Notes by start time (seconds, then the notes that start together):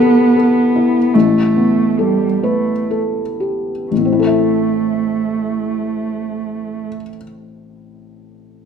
Already playing: A1 C3 B3
0.00 A4
0.37 A4
0.76 E4
1.14 A1 A3
1.56 B3
1.99 G3 A4
2.43 A3 B4
2.91 A4
3.40 G4
3.91 A1 A3
3.98 A2
4.05 C4
4.12 E4
4.20 A4
4.27 E5